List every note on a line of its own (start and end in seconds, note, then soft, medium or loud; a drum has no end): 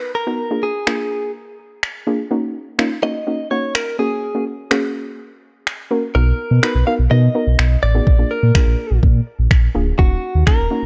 0.00 0.11 B4 loud
0.15 0.64 A#4 medium
0.27 0.39 B3 medium
0.27 0.39 D#4 medium
0.27 0.39 F#4 medium
0.27 0.39 A#4 medium
0.51 0.69 A#3 medium
0.51 0.69 D4 medium
0.51 0.69 F4 medium
0.51 0.69 G#4 medium
0.63 1.31 G#4 medium
0.87 1.34 A#3 medium
0.87 1.34 D4 medium
0.87 1.34 F4 medium
0.87 1.34 G#4 medium
0.87 finger snap loud
1.83 finger snap loud
2.07 2.19 A#3 medium
2.07 2.19 D4 medium
2.07 2.19 F4 medium
2.07 2.19 G#4 medium
2.31 2.55 A#3 medium
2.31 2.55 C#4 medium
2.31 2.55 D#4 medium
2.31 2.55 F#4 loud
2.79 2.91 A#3 loud
2.79 2.91 C#4 medium
2.79 2.91 D#4 loud
2.79 2.91 F4 loud
2.79 finger snap loud
3.03 3.15 A#3 medium
3.03 3.15 C#4 medium
3.03 3.15 D#4 medium
3.03 3.15 F#4 medium
3.03 3.48 D#5 loud
3.27 3.39 A#3 medium
3.27 3.39 C#4 medium
3.27 3.39 D#4 medium
3.27 3.39 F#4 medium
3.51 3.80 A#3 medium
3.51 3.81 C#4 medium
3.51 3.81 D#4 medium
3.51 3.81 F#4 medium
3.51 3.73 C#5 medium
3.75 3.99 A#4 medium
3.75 finger snap loud
3.99 4.28 A#3 medium
3.99 4.28 C#4 medium
3.99 4.28 F#4 medium
3.99 4.44 G#4 medium
3.99 4.28 G#4 medium
4.35 4.53 A#3 medium
4.35 4.53 C#4 medium
4.35 4.53 F#4 medium
4.35 4.53 G#4 medium
4.71 5.18 A#3 loud
4.71 5.18 C#4 loud
4.71 5.18 F#4 loud
4.71 5.18 G#4 loud
4.71 finger snap loud
5.67 finger snap loud
5.91 6.03 A#3 medium
5.91 6.03 C#4 medium
5.91 6.03 F#4 medium
5.91 6.03 A#4 loud
6.15 6.33 B1 medium
6.15 6.39 B3 medium
6.15 6.39 D#4 medium
6.15 6.39 F#4 medium
6.15 6.64 A#4 medium
6.15 6.39 A#4 medium
6.51 6.60 B2 medium
6.63 6.75 B3 medium
6.63 6.75 D#4 medium
6.63 6.75 F#4 medium
6.63 6.75 A#4 medium
6.63 6.86 B4 medium
6.63 finger snap loud
6.75 6.84 B1 medium
6.87 6.99 B3 medium
6.87 6.99 D#4 medium
6.87 6.99 F#4 medium
6.87 6.99 A#4 medium
6.87 6.93 F5 loud
6.99 7.08 B1 medium
7.11 7.29 B2 loud
7.11 7.23 B3 medium
7.11 7.23 D#4 medium
7.11 7.23 F#4 medium
7.11 7.23 A#4 medium
7.11 7.82 D#5 loud
7.35 7.64 B3 medium
7.35 7.65 D#4 medium
7.35 7.65 F#4 medium
7.35 7.65 A#4 medium
7.47 7.56 B1 medium
7.59 7.77 B1 medium
7.59 finger snap loud
7.83 8.01 A1 medium
7.83 8.32 D5 medium
7.95 8.07 B3 medium
7.95 8.07 D#4 medium
7.95 8.07 F#4 medium
7.95 8.07 G#4 medium
8.07 8.25 A#1 loud
8.07 kick loud
8.19 8.37 A#3 medium
8.19 8.37 D4 medium
8.19 8.37 F4 medium
8.19 8.37 G#4 medium
8.31 8.99 A#4 medium
8.43 8.52 A#2 loud
8.55 9.02 A#3 medium
8.55 9.02 D4 medium
8.55 9.02 F4 medium
8.55 9.02 G#4 medium
8.55 finger snap loud
8.55 kick loud
8.67 8.76 A#1 medium
8.91 9.00 A#1 medium
9.03 9.21 A#2 loud
9.03 kick loud
9.39 9.48 A#1 medium
9.51 9.68 A#1 medium
9.51 finger snap loud
9.51 kick loud
9.75 9.93 D1 medium
9.75 9.87 A#3 medium
9.75 9.87 D4 medium
9.75 9.87 F4 medium
9.75 9.87 G#4 loud
9.99 10.17 D#1 loud
9.99 10.22 A#3 medium
9.99 10.23 C#4 medium
9.99 10.23 D#4 medium
9.99 10.43 F#4 loud
9.99 10.23 F#4 medium
9.99 kick loud
10.35 10.44 D#2 medium
10.47 10.59 A#3 medium
10.47 10.59 C#4 medium
10.47 10.59 D#4 medium
10.47 10.59 F#4 medium
10.47 10.86 A#4 loud
10.47 finger snap loud
10.47 kick loud
10.59 10.68 D#1 loud
10.71 10.83 A#3 medium
10.71 10.83 C#4 medium
10.71 10.83 D#4 medium
10.71 10.83 F#4 medium